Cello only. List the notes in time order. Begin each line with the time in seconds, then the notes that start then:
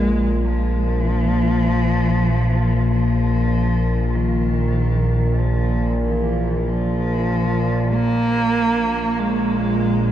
Already playing: G#3
0.48 F3
2.92 F3
4.14 D#3
5.38 F3
6.04 E3
6.69 F3
7.95 A#3
9.19 G#3